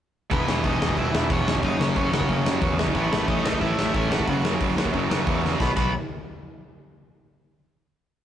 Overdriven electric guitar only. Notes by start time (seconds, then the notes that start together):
0.31 B3 B4
0.65 D#4 D#5
0.98 E4 E5
1.30 C#4 C#5
1.64 D#4 D#5
1.81 C#4 C#5
2.13 C#4 C#5
2.95 B3 B4
3.30 D#4 D#5
3.61 E4 E5
3.95 C#4 C#5
4.11 F#4 F#5
5.60 B5
5.77 B5